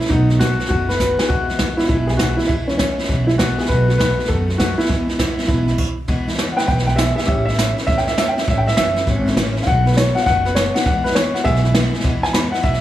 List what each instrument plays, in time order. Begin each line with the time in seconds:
Already playing: upright piano E4
0.00 steel-string acoustic guitar A3, snare
0.05 steel-string acoustic guitar B2, upright piano D#4, snare
0.10 upright bass B1, steel-string acoustic guitar D#3 A3 B3 F#4, kick, snare
0.29 steel-string acoustic guitar A3 B3 F#4, snare
0.39 steel-string acoustic guitar D#3 A3 B3 F#4, upright piano F#4, kick, snare, hi-hat pedal
0.59 steel-string acoustic guitar A3 B3 F#4, snare
0.65 upright piano F#4, snare
0.70 upright bass F#1, steel-string acoustic guitar B2 D#3 A3 B3 F#4, kick, snare
0.89 steel-string acoustic guitar A3 B3 F#4, upright piano B4, snare
0.99 steel-string acoustic guitar D#3 A3 B3 F#4, upright piano B4, kick, snare, hi-hat pedal
1.17 steel-string acoustic guitar A3 B3 F#4, upright piano G#4, snare
1.28 steel-string acoustic guitar E2 B2 E3 G#3 B3 E4, upright bass E2, upright piano F#4, kick, snare
1.48 steel-string acoustic guitar E3 G#3 B3 E4, snare
1.59 steel-string acoustic guitar E3 G#3 B3 E4, kick, snare, hi-hat pedal
1.77 steel-string acoustic guitar E3 G#3 B3 E4, upright piano E4, snare
1.84 snare
1.88 upright bass B1, steel-string acoustic guitar E2 B2 E3 G#3 B3 E4, upright piano E4, kick, snare
2.07 steel-string acoustic guitar E3 G#3 B3 E4, upright piano G#4, snare
2.17 steel-string acoustic guitar E3 G#3 B3 E4, upright piano F#4, kick, snare, hi-hat pedal
2.36 steel-string acoustic guitar G#3 B3 E4, upright piano E4, snare
2.41 steel-string acoustic guitar E3, snare
2.47 steel-string acoustic guitar E2 B2 E3 G#3 B3 E4, upright bass E2, upright piano E4, kick, snare
2.67 steel-string acoustic guitar E3 G#3 B3 E4, upright piano C#4, snare
2.78 steel-string acoustic guitar E3 G#3 B3 E4, upright piano C#4, kick, snare, hi-hat pedal
2.98 steel-string acoustic guitar E3 G#3 B3 E4, snare
3.04 snare
3.08 upright bass B1, steel-string acoustic guitar E2 B2 E3 G#3 B3 E4, kick, snare
3.27 steel-string acoustic guitar E3 G#3 B3 E4, upright piano E4, snare
3.38 steel-string acoustic guitar E3 G#3 B3 E4, upright piano F#4, kick, snare, hi-hat pedal
3.58 steel-string acoustic guitar E3 G#3 B3 E4, upright piano G#4, snare
3.65 steel-string acoustic guitar B2 D#3, upright piano B4, snare
3.69 upright bass B1, steel-string acoustic guitar A3 B3 F#4, kick, snare
3.88 steel-string acoustic guitar A3 B3 F#4, snare
3.98 steel-string acoustic guitar D#3 A3 B3 F#4, upright piano B4, kick, snare, hi-hat pedal
4.18 steel-string acoustic guitar A3 B3 F#4, snare
4.24 upright piano A4, snare
4.29 upright bass F#2, steel-string acoustic guitar B2 D#3 A3 B3 F#4, kick, snare
4.48 steel-string acoustic guitar A3 B3 F#4, snare
4.58 steel-string acoustic guitar D#3 A3 B3 F#4, upright piano F#4, kick, snare, hi-hat pedal
4.77 steel-string acoustic guitar A3 B3 F#4, upright piano E4, snare
4.85 steel-string acoustic guitar E2 B2 E3, snare
4.89 upright bass E2, steel-string acoustic guitar G#3 B3 E4, kick, snare
5.08 steel-string acoustic guitar E3 G#3 B3 E4, snare
5.18 steel-string acoustic guitar E3 G#3 B3 E4, kick, snare, hi-hat pedal
5.38 steel-string acoustic guitar E3 G#3 B3 E4, snare
5.44 upright piano E4, snare
5.48 upright bass B1, steel-string acoustic guitar E2 B2 E3 G#3 B3 E4, kick, snare
5.68 steel-string acoustic guitar E3 G#3 B3 E4, snare
5.78 kick, crash
6.08 steel-string acoustic guitar E2 B2 E3 G#3 B3 E4, upright bass E2, kick, snare
6.27 steel-string acoustic guitar E3 G#3 B3 E4, snare
6.34 snare
6.38 steel-string acoustic guitar E3 G#3 B3 E4, snare, hi-hat pedal
6.52 upright piano F#5
6.56 steel-string acoustic guitar E3 G#3 B3 E4, upright piano B4 G5, snare
6.67 upright bass B1, steel-string acoustic guitar E2 B2 E3 G#3 B3 E4, upright piano B4 G5, kick, snare
6.78 snare
6.86 steel-string acoustic guitar E3 G#3 B3 E4, upright piano B4 G5, snare
6.96 steel-string acoustic guitar E3 G#3 B3, upright piano G#4 E5, snare, hi-hat pedal
7.00 steel-string acoustic guitar E4
7.16 steel-string acoustic guitar G#3 B3 E4, upright piano G#4 E5, snare
7.20 steel-string acoustic guitar E3, snare
7.26 upright bass A1, steel-string acoustic guitar A2 E3 A3 C#4 E4, upright piano G4 E5, kick, snare
7.45 steel-string acoustic guitar A3 C#4 E4, upright piano E5, snare
7.54 snare
7.58 steel-string acoustic guitar E3 A3 C#4 E4, snare, hi-hat pedal
7.77 steel-string acoustic guitar A3 C#4 E4, snare
7.86 upright bass E2, steel-string acoustic guitar A2 E3 A3 C#4 E4, upright piano E5, kick, snare
7.98 upright piano G5, snare
8.07 steel-string acoustic guitar A3 C#4 E4, upright piano E5, snare
8.17 steel-string acoustic guitar E3 A3 C#4 E4, upright piano E5, snare, hi-hat pedal
8.28 upright piano G5
8.37 steel-string acoustic guitar A3 C#4 E4, upright piano E5, snare
8.43 snare
8.47 upright bass A1, steel-string acoustic guitar A2 E3 A3 C#4 E4, upright piano E5, kick, snare
8.58 upright piano G5
8.66 steel-string acoustic guitar A3 C#4 E4, upright piano E5, snare
8.77 upright bass F#1, steel-string acoustic guitar E3 A3 C#4 E4, upright piano E5, snare, hi-hat pedal
8.96 steel-string acoustic guitar A3 C#4 E4, snare
9.07 upright bass G#1, steel-string acoustic guitar A2 E3 A3 C#4 E4, kick, snare
9.26 steel-string acoustic guitar A3 C#4 E4, snare
9.36 upright bass A1, steel-string acoustic guitar E3 A3 C#4 E4, snare, hi-hat pedal
9.56 steel-string acoustic guitar A3 C#4 E4, snare
9.62 upright piano F5, snare
9.67 upright bass B1, steel-string acoustic guitar B2 D#3 A3 B3 F#4, upright piano F#5, kick, snare
9.86 steel-string acoustic guitar A3 B3 F#4, upright piano B4, snare
9.93 steel-string acoustic guitar D#3, snare
9.97 steel-string acoustic guitar A3 B3 F#4, upright piano C#5, snare, hi-hat pedal
10.15 steel-string acoustic guitar A3 B3 F#4, upright piano F#5, snare
10.22 upright piano F5
10.26 upright bass F#1, steel-string acoustic guitar B2 D#3 A3 B3 F#4, upright piano F#5, kick, snare
10.45 steel-string acoustic guitar A3 B3 F#4, upright piano B4, snare
10.55 steel-string acoustic guitar D#3 A3 B3 F#4, upright piano C#5, snare, hi-hat pedal
10.74 steel-string acoustic guitar A3 B3 F#4, upright piano F#5, snare
10.85 steel-string acoustic guitar E2 B2 E3 G#3 B3 E4, upright bass E2, upright piano F#5, kick, snare
11.04 steel-string acoustic guitar E3 G#3 B3 E4, upright piano B4, snare
11.11 steel-string acoustic guitar E3 G#3, upright piano C#5, snare
11.16 steel-string acoustic guitar B3 E4, snare, hi-hat pedal
11.34 steel-string acoustic guitar E3 G#3 B3 E4, upright piano F#5, snare
11.44 upright bass B1, steel-string acoustic guitar E2 B2 E3 G#3 B3 E4, upright piano G#4 E5, kick, snare
11.55 snare
11.64 steel-string acoustic guitar E3 G#3 B3 E4, snare
11.74 steel-string acoustic guitar E3 G#3 B3 E4, snare, hi-hat pedal
11.94 steel-string acoustic guitar E3 G#3 B3 E4, snare
12.00 snare
12.04 steel-string acoustic guitar E2 B2 E3 G#3 B3 E4, upright bass E2, kick, snare
12.23 steel-string acoustic guitar E3 G#3 B3 E4, upright piano G#5, snare
12.33 steel-string acoustic guitar E3 G#3 B3 E4, upright piano B5, snare, hi-hat pedal
12.52 steel-string acoustic guitar E3 G#3 B3 E4, upright piano F#5, snare
12.62 upright bass B1, steel-string acoustic guitar E2 B2 E3 G#3 B3 E4, upright piano E5, kick, snare
12.74 snare